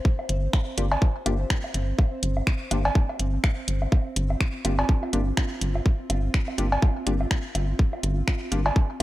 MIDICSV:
0, 0, Header, 1, 5, 480
1, 0, Start_track
1, 0, Key_signature, -2, "minor"
1, 0, Tempo, 483871
1, 50, Time_signature, 4, 2, 24, 8
1, 8954, End_track
2, 0, Start_track
2, 0, Title_t, "Synth texture"
2, 0, Program_c, 0, 99
2, 0, Note_on_c, 0, 60, 84
2, 0, Note_on_c, 0, 72, 85
2, 3889, Note_on_c, 0, 65, 83
2, 3917, Note_off_c, 0, 72, 0
2, 8954, Note_off_c, 0, 60, 0
2, 8954, Note_off_c, 0, 65, 0
2, 8954, End_track
3, 0, Start_track
3, 0, Title_t, "Synth stab"
3, 0, Program_c, 1, 62
3, 769, Note_on_c, 1, 58, 79
3, 769, Note_on_c, 1, 62, 71
3, 769, Note_on_c, 1, 65, 71
3, 769, Note_on_c, 1, 67, 85
3, 847, Note_off_c, 1, 58, 0
3, 847, Note_off_c, 1, 62, 0
3, 847, Note_off_c, 1, 65, 0
3, 847, Note_off_c, 1, 67, 0
3, 1249, Note_on_c, 1, 58, 78
3, 1249, Note_on_c, 1, 62, 70
3, 1249, Note_on_c, 1, 65, 69
3, 1249, Note_on_c, 1, 67, 86
3, 1327, Note_off_c, 1, 58, 0
3, 1327, Note_off_c, 1, 62, 0
3, 1327, Note_off_c, 1, 65, 0
3, 1327, Note_off_c, 1, 67, 0
3, 2689, Note_on_c, 1, 58, 78
3, 2689, Note_on_c, 1, 62, 71
3, 2689, Note_on_c, 1, 65, 71
3, 2689, Note_on_c, 1, 67, 84
3, 2767, Note_off_c, 1, 58, 0
3, 2767, Note_off_c, 1, 62, 0
3, 2767, Note_off_c, 1, 65, 0
3, 2767, Note_off_c, 1, 67, 0
3, 4609, Note_on_c, 1, 58, 78
3, 4609, Note_on_c, 1, 62, 72
3, 4609, Note_on_c, 1, 65, 70
3, 4609, Note_on_c, 1, 67, 86
3, 4687, Note_off_c, 1, 58, 0
3, 4687, Note_off_c, 1, 62, 0
3, 4687, Note_off_c, 1, 65, 0
3, 4687, Note_off_c, 1, 67, 0
3, 5089, Note_on_c, 1, 62, 72
3, 5090, Note_on_c, 1, 58, 76
3, 5090, Note_on_c, 1, 65, 71
3, 5090, Note_on_c, 1, 67, 84
3, 5167, Note_off_c, 1, 58, 0
3, 5167, Note_off_c, 1, 62, 0
3, 5167, Note_off_c, 1, 65, 0
3, 5167, Note_off_c, 1, 67, 0
3, 6529, Note_on_c, 1, 58, 78
3, 6529, Note_on_c, 1, 62, 71
3, 6529, Note_on_c, 1, 65, 71
3, 6529, Note_on_c, 1, 67, 87
3, 6607, Note_off_c, 1, 58, 0
3, 6607, Note_off_c, 1, 62, 0
3, 6607, Note_off_c, 1, 65, 0
3, 6607, Note_off_c, 1, 67, 0
3, 7009, Note_on_c, 1, 58, 75
3, 7009, Note_on_c, 1, 62, 70
3, 7009, Note_on_c, 1, 65, 70
3, 7009, Note_on_c, 1, 67, 85
3, 7087, Note_off_c, 1, 58, 0
3, 7087, Note_off_c, 1, 62, 0
3, 7087, Note_off_c, 1, 65, 0
3, 7087, Note_off_c, 1, 67, 0
3, 8448, Note_on_c, 1, 58, 78
3, 8448, Note_on_c, 1, 62, 72
3, 8448, Note_on_c, 1, 67, 88
3, 8449, Note_on_c, 1, 65, 74
3, 8527, Note_off_c, 1, 58, 0
3, 8527, Note_off_c, 1, 62, 0
3, 8527, Note_off_c, 1, 65, 0
3, 8527, Note_off_c, 1, 67, 0
3, 8954, End_track
4, 0, Start_track
4, 0, Title_t, "Analog synth bass"
4, 0, Program_c, 2, 38
4, 290, Note_on_c, 2, 31, 98
4, 476, Note_off_c, 2, 31, 0
4, 770, Note_on_c, 2, 31, 86
4, 956, Note_off_c, 2, 31, 0
4, 1250, Note_on_c, 2, 31, 76
4, 1436, Note_off_c, 2, 31, 0
4, 1730, Note_on_c, 2, 31, 82
4, 1916, Note_off_c, 2, 31, 0
4, 2210, Note_on_c, 2, 31, 100
4, 2396, Note_off_c, 2, 31, 0
4, 2689, Note_on_c, 2, 31, 88
4, 2876, Note_off_c, 2, 31, 0
4, 3169, Note_on_c, 2, 31, 77
4, 3356, Note_off_c, 2, 31, 0
4, 3649, Note_on_c, 2, 31, 82
4, 3836, Note_off_c, 2, 31, 0
4, 4129, Note_on_c, 2, 31, 99
4, 4316, Note_off_c, 2, 31, 0
4, 4610, Note_on_c, 2, 31, 88
4, 4796, Note_off_c, 2, 31, 0
4, 5090, Note_on_c, 2, 31, 76
4, 5276, Note_off_c, 2, 31, 0
4, 5569, Note_on_c, 2, 31, 82
4, 5756, Note_off_c, 2, 31, 0
4, 6049, Note_on_c, 2, 31, 98
4, 6236, Note_off_c, 2, 31, 0
4, 6529, Note_on_c, 2, 31, 89
4, 6716, Note_off_c, 2, 31, 0
4, 7009, Note_on_c, 2, 31, 77
4, 7196, Note_off_c, 2, 31, 0
4, 7489, Note_on_c, 2, 31, 82
4, 7676, Note_off_c, 2, 31, 0
4, 7969, Note_on_c, 2, 31, 102
4, 8156, Note_off_c, 2, 31, 0
4, 8449, Note_on_c, 2, 31, 88
4, 8636, Note_off_c, 2, 31, 0
4, 8954, End_track
5, 0, Start_track
5, 0, Title_t, "Drums"
5, 49, Note_on_c, 9, 36, 117
5, 149, Note_off_c, 9, 36, 0
5, 189, Note_on_c, 9, 77, 46
5, 288, Note_off_c, 9, 77, 0
5, 290, Note_on_c, 9, 42, 93
5, 389, Note_off_c, 9, 42, 0
5, 529, Note_on_c, 9, 36, 107
5, 529, Note_on_c, 9, 77, 45
5, 530, Note_on_c, 9, 26, 93
5, 628, Note_off_c, 9, 77, 0
5, 629, Note_off_c, 9, 26, 0
5, 629, Note_off_c, 9, 36, 0
5, 770, Note_on_c, 9, 42, 96
5, 869, Note_off_c, 9, 42, 0
5, 908, Note_on_c, 9, 56, 93
5, 908, Note_on_c, 9, 77, 45
5, 1007, Note_off_c, 9, 56, 0
5, 1007, Note_off_c, 9, 77, 0
5, 1009, Note_on_c, 9, 36, 120
5, 1109, Note_off_c, 9, 36, 0
5, 1249, Note_on_c, 9, 77, 44
5, 1250, Note_on_c, 9, 42, 91
5, 1348, Note_off_c, 9, 77, 0
5, 1349, Note_off_c, 9, 42, 0
5, 1489, Note_on_c, 9, 36, 101
5, 1490, Note_on_c, 9, 26, 94
5, 1588, Note_off_c, 9, 36, 0
5, 1589, Note_off_c, 9, 26, 0
5, 1629, Note_on_c, 9, 77, 47
5, 1728, Note_off_c, 9, 77, 0
5, 1729, Note_on_c, 9, 42, 94
5, 1829, Note_off_c, 9, 42, 0
5, 1969, Note_on_c, 9, 36, 117
5, 1970, Note_on_c, 9, 77, 44
5, 2069, Note_off_c, 9, 36, 0
5, 2069, Note_off_c, 9, 77, 0
5, 2210, Note_on_c, 9, 42, 93
5, 2309, Note_off_c, 9, 42, 0
5, 2349, Note_on_c, 9, 77, 45
5, 2448, Note_off_c, 9, 77, 0
5, 2449, Note_on_c, 9, 36, 105
5, 2450, Note_on_c, 9, 26, 89
5, 2549, Note_off_c, 9, 26, 0
5, 2549, Note_off_c, 9, 36, 0
5, 2689, Note_on_c, 9, 42, 94
5, 2690, Note_on_c, 9, 77, 45
5, 2789, Note_off_c, 9, 42, 0
5, 2789, Note_off_c, 9, 77, 0
5, 2829, Note_on_c, 9, 56, 90
5, 2928, Note_off_c, 9, 56, 0
5, 2929, Note_on_c, 9, 36, 118
5, 3028, Note_off_c, 9, 36, 0
5, 3069, Note_on_c, 9, 77, 46
5, 3169, Note_off_c, 9, 77, 0
5, 3169, Note_on_c, 9, 42, 90
5, 3269, Note_off_c, 9, 42, 0
5, 3409, Note_on_c, 9, 36, 100
5, 3410, Note_on_c, 9, 26, 90
5, 3410, Note_on_c, 9, 77, 44
5, 3508, Note_off_c, 9, 36, 0
5, 3509, Note_off_c, 9, 26, 0
5, 3509, Note_off_c, 9, 77, 0
5, 3649, Note_on_c, 9, 42, 91
5, 3749, Note_off_c, 9, 42, 0
5, 3789, Note_on_c, 9, 77, 44
5, 3888, Note_off_c, 9, 77, 0
5, 3889, Note_on_c, 9, 36, 114
5, 3890, Note_on_c, 9, 77, 42
5, 3989, Note_off_c, 9, 36, 0
5, 3989, Note_off_c, 9, 77, 0
5, 4130, Note_on_c, 9, 42, 90
5, 4229, Note_off_c, 9, 42, 0
5, 4269, Note_on_c, 9, 77, 43
5, 4368, Note_off_c, 9, 77, 0
5, 4369, Note_on_c, 9, 36, 101
5, 4370, Note_on_c, 9, 26, 84
5, 4469, Note_off_c, 9, 26, 0
5, 4469, Note_off_c, 9, 36, 0
5, 4610, Note_on_c, 9, 42, 90
5, 4610, Note_on_c, 9, 77, 45
5, 4709, Note_off_c, 9, 42, 0
5, 4709, Note_off_c, 9, 77, 0
5, 4749, Note_on_c, 9, 56, 85
5, 4848, Note_off_c, 9, 56, 0
5, 4849, Note_on_c, 9, 36, 114
5, 4949, Note_off_c, 9, 36, 0
5, 4989, Note_on_c, 9, 77, 43
5, 5088, Note_off_c, 9, 77, 0
5, 5090, Note_on_c, 9, 42, 86
5, 5189, Note_off_c, 9, 42, 0
5, 5329, Note_on_c, 9, 36, 96
5, 5330, Note_on_c, 9, 26, 90
5, 5330, Note_on_c, 9, 77, 43
5, 5429, Note_off_c, 9, 26, 0
5, 5429, Note_off_c, 9, 36, 0
5, 5429, Note_off_c, 9, 77, 0
5, 5569, Note_on_c, 9, 42, 87
5, 5668, Note_off_c, 9, 42, 0
5, 5709, Note_on_c, 9, 77, 44
5, 5808, Note_off_c, 9, 77, 0
5, 5809, Note_on_c, 9, 36, 109
5, 5909, Note_off_c, 9, 36, 0
5, 6049, Note_on_c, 9, 77, 43
5, 6050, Note_on_c, 9, 42, 87
5, 6148, Note_off_c, 9, 77, 0
5, 6149, Note_off_c, 9, 42, 0
5, 6289, Note_on_c, 9, 36, 97
5, 6290, Note_on_c, 9, 26, 86
5, 6389, Note_off_c, 9, 26, 0
5, 6389, Note_off_c, 9, 36, 0
5, 6428, Note_on_c, 9, 77, 42
5, 6527, Note_off_c, 9, 77, 0
5, 6530, Note_on_c, 9, 42, 90
5, 6629, Note_off_c, 9, 42, 0
5, 6668, Note_on_c, 9, 56, 85
5, 6767, Note_off_c, 9, 56, 0
5, 6769, Note_on_c, 9, 36, 116
5, 6769, Note_on_c, 9, 77, 43
5, 6869, Note_off_c, 9, 36, 0
5, 6869, Note_off_c, 9, 77, 0
5, 7010, Note_on_c, 9, 42, 83
5, 7109, Note_off_c, 9, 42, 0
5, 7148, Note_on_c, 9, 77, 40
5, 7248, Note_off_c, 9, 77, 0
5, 7249, Note_on_c, 9, 36, 93
5, 7250, Note_on_c, 9, 26, 86
5, 7348, Note_off_c, 9, 36, 0
5, 7349, Note_off_c, 9, 26, 0
5, 7489, Note_on_c, 9, 77, 42
5, 7490, Note_on_c, 9, 42, 88
5, 7588, Note_off_c, 9, 77, 0
5, 7589, Note_off_c, 9, 42, 0
5, 7729, Note_on_c, 9, 36, 108
5, 7828, Note_off_c, 9, 36, 0
5, 7868, Note_on_c, 9, 77, 42
5, 7967, Note_off_c, 9, 77, 0
5, 7970, Note_on_c, 9, 42, 85
5, 8069, Note_off_c, 9, 42, 0
5, 8209, Note_on_c, 9, 36, 98
5, 8209, Note_on_c, 9, 77, 42
5, 8210, Note_on_c, 9, 26, 87
5, 8308, Note_off_c, 9, 36, 0
5, 8308, Note_off_c, 9, 77, 0
5, 8309, Note_off_c, 9, 26, 0
5, 8449, Note_on_c, 9, 42, 88
5, 8549, Note_off_c, 9, 42, 0
5, 8588, Note_on_c, 9, 56, 86
5, 8588, Note_on_c, 9, 77, 42
5, 8687, Note_off_c, 9, 56, 0
5, 8687, Note_off_c, 9, 77, 0
5, 8689, Note_on_c, 9, 36, 110
5, 8788, Note_off_c, 9, 36, 0
5, 8954, End_track
0, 0, End_of_file